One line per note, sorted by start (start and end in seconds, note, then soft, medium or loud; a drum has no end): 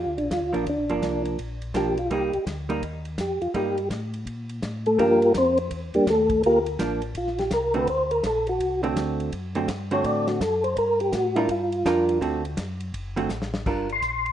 0.00 0.18 F4 medium
0.06 0.18 D2 medium
0.18 0.29 A#1 medium
0.18 0.30 D4 medium
0.18 ride soft
0.30 0.42 D#2 medium
0.30 0.65 F4 medium
0.30 kick soft
0.30 snare medium
0.30 hi-hat pedal medium
0.30 ride medium
0.42 0.54 D2 medium
0.53 0.65 A#1 medium
0.53 0.65 F3 medium
0.53 0.65 A#3 medium
0.53 0.65 D4 medium
0.53 ride soft
0.66 0.77 D2 medium
0.66 1.23 D4 medium
0.66 kick soft
0.66 ride medium
0.78 0.90 A#1 medium
0.89 1.01 G1 medium
0.89 1.36 F3 medium
0.89 1.36 A#3 medium
0.89 1.36 D4 medium
0.89 ride soft
1.02 1.37 C2 medium
1.02 kick soft
1.02 snare medium
1.02 hi-hat pedal medium
1.02 ride medium
1.25 ride soft
1.38 1.73 A#1 medium
1.38 kick soft
1.38 ride medium
1.62 ride medium
1.74 2.09 B1 medium
1.74 1.95 F3 medium
1.74 1.95 A#3 medium
1.74 1.95 D4 medium
1.74 1.98 G4 medium
1.74 kick soft
1.74 snare medium
1.74 hi-hat pedal medium
1.74 ride medium
1.97 2.11 F4 medium
1.97 ride soft
2.10 2.31 C2 medium
2.10 2.31 G3 medium
2.10 2.31 A#3 medium
2.10 2.32 D#4 medium
2.10 2.45 G4 medium
2.10 kick soft
2.10 ride medium
2.33 2.39 C2 soft
2.33 ride soft
2.46 2.81 D2 medium
2.46 kick soft
2.46 snare medium
2.46 hi-hat pedal medium
2.46 ride medium
2.69 2.81 G3 medium
2.69 2.81 A#3 medium
2.69 2.81 D#4 medium
2.69 ride medium
2.82 3.17 D#2 medium
2.82 kick soft
2.82 ride medium
3.05 ride medium
3.18 3.40 F2 medium
3.18 3.42 G4 medium
3.18 kick soft
3.18 snare medium
3.18 hi-hat pedal medium
3.18 ride medium
3.41 3.48 F2 soft
3.41 3.54 F4 medium
3.41 ride soft
3.54 3.89 G2 medium
3.54 3.75 G3 medium
3.54 3.75 A#3 medium
3.54 3.76 D#4 medium
3.54 3.89 G4 medium
3.54 kick soft
3.54 ride medium
3.77 ride soft
3.90 4.25 A2 loud
3.90 kick soft
3.90 snare medium
3.90 hi-hat pedal medium
3.90 ride medium
4.14 ride soft
4.26 4.61 A#2 medium
4.26 kick soft
4.26 ride medium
4.49 ride medium
4.62 4.98 A2 loud
4.62 kick soft
4.62 snare medium
4.62 hi-hat pedal medium
4.62 ride medium
4.86 4.99 A3 medium
4.86 4.99 A4 medium
4.86 ride soft
4.98 5.33 G2 medium
4.98 5.19 F3 medium
4.98 5.19 A#3 medium
4.98 5.33 A#3 medium
4.98 5.20 D4 medium
4.98 5.33 F4 medium
4.98 5.33 G4 medium
4.98 5.33 A#4 medium
4.98 kick soft
4.98 ride medium
5.22 ride soft
5.34 5.70 F2 loud
5.34 5.59 C4 medium
5.34 5.58 C5 medium
5.34 kick soft
5.34 snare medium
5.34 hi-hat pedal medium
5.34 ride medium
5.57 ride medium
5.71 5.92 E2 medium
5.71 kick soft
5.71 ride medium
5.93 6.00 E2 soft
5.93 6.07 G3 medium
5.93 6.07 A#3 medium
5.93 6.07 D4 medium
5.93 6.07 G4 medium
5.93 ride soft
6.07 6.42 D#2 loud
6.07 6.42 A3 medium
6.07 6.42 A4 medium
6.07 kick soft
6.07 snare medium
6.07 hi-hat pedal medium
6.07 ride medium
6.30 kick medium
6.30 ride medium
6.43 6.78 D2 medium
6.43 6.59 A#3 medium
6.43 6.59 F4 medium
6.43 6.59 G4 medium
6.43 6.59 A#4 loud
6.43 kick soft
6.43 ride medium
6.66 ride medium
6.79 7.14 A1 loud
6.79 7.00 F3 medium
6.79 7.00 A#3 medium
6.79 7.00 D4 medium
6.79 kick soft
6.79 snare medium
6.79 hi-hat pedal medium
6.79 ride medium
7.02 ride medium
7.15 7.50 A#1 medium
7.15 7.39 F4 medium
7.15 kick soft
7.15 ride medium
7.27 snare soft
7.38 7.51 G4 medium
7.38 snare medium
7.38 ride soft
7.51 7.86 C2 medium
7.51 7.75 A#4 medium
7.51 kick soft
7.51 snare medium
7.51 hi-hat pedal medium
7.51 ride medium
7.74 7.86 D3 medium
7.74 7.86 A3 medium
7.74 7.86 C4 medium
7.74 7.86 F#4 medium
7.74 7.87 B4 medium
7.74 ride soft
7.87 8.22 D2 medium
7.87 8.11 C5 loud
7.87 kick soft
7.87 ride medium
8.11 8.24 A#4 medium
8.11 ride medium
8.23 8.59 A#1 loud
8.23 8.47 A4 medium
8.23 kick soft
8.23 snare medium
8.23 hi-hat pedal medium
8.23 ride medium
8.47 8.81 F#4 medium
8.47 ride medium
8.60 8.95 C2 medium
8.60 kick soft
8.60 ride medium
8.83 9.29 D3 medium
8.83 9.30 A3 medium
8.83 9.30 C4 medium
8.83 9.30 F#4 medium
8.83 ride medium
8.96 9.31 D2 medium
8.96 kick soft
8.96 snare medium
8.96 hi-hat pedal medium
8.96 ride medium
9.20 ride medium
9.32 9.67 F#2 medium
9.32 kick soft
9.32 ride medium
9.55 9.67 D3 medium
9.55 9.67 A3 medium
9.55 9.67 C4 medium
9.55 9.67 F#4 medium
9.55 ride medium
9.68 10.03 G2 loud
9.68 kick soft
9.68 snare medium
9.68 hi-hat pedal medium
9.68 ride medium
9.91 10.38 D3 medium
9.91 10.38 A3 medium
9.91 10.38 C4 medium
9.91 10.38 F#4 medium
9.91 10.05 C#5 medium
9.91 ride medium
10.04 10.39 A2 medium
10.04 10.27 D5 loud
10.04 kick soft
10.04 ride medium
10.27 10.40 F#4 medium
10.27 snare medium
10.27 ride medium
10.40 10.75 F#2 loud
10.40 10.64 A4 medium
10.40 kick soft
10.40 snare medium
10.40 hi-hat pedal medium
10.40 ride medium
10.64 10.76 C5 loud
10.64 ride medium
10.77 11.12 G2 medium
10.77 11.00 A#4 loud
10.77 kick soft
10.77 ride medium
11.00 11.13 G4 medium
11.00 ride medium
11.12 11.48 A2 loud
11.12 11.36 F#4 medium
11.12 kick soft
11.12 snare medium
11.12 hi-hat pedal medium
11.12 ride medium
11.35 11.48 G3 medium
11.35 11.48 D4 medium
11.35 11.48 E4 medium
11.35 11.48 F4 medium
11.35 11.48 A#4 medium
11.35 ride medium
11.49 11.84 G2 loud
11.49 12.18 F4 medium
11.49 kick soft
11.49 ride medium
11.72 ride medium
11.85 12.20 F2 loud
11.85 12.21 G3 medium
11.85 12.21 D4 medium
11.85 12.21 F4 medium
11.85 12.22 A#4 medium
11.85 kick soft
11.85 snare medium
11.85 hi-hat pedal medium
11.85 ride medium
12.09 ride medium
12.21 12.57 D2 medium
12.21 12.42 D3 medium
12.21 12.42 A3 medium
12.21 12.42 C4 medium
12.21 12.42 F#4 medium
12.21 kick soft
12.21 ride medium
12.45 ride medium
12.57 12.93 F#2 loud
12.57 kick soft
12.57 snare medium
12.57 hi-hat pedal medium
12.57 ride medium
12.80 ride medium
12.94 13.29 F#1 medium
12.94 kick soft
12.94 ride medium
13.16 13.28 D3 medium
13.16 13.29 A3 medium
13.16 13.29 C4 medium
13.16 13.29 F#4 medium
13.16 ride medium
13.29 13.65 A1 loud
13.29 snare medium
13.29 hi-hat pedal medium
13.42 snare medium
13.54 snare medium
13.66 14.01 G1 medium
13.66 13.87 G3 medium
13.66 13.87 D4 medium
13.66 13.87 F4 medium
13.66 13.87 A#4 medium
13.66 kick medium
13.66 crash medium
13.89 14.32 C6 medium
13.89 ride soft
14.02 14.32 A#1 medium
14.02 kick soft
14.02 hi-hat pedal medium
14.02 ride medium
14.26 ride soft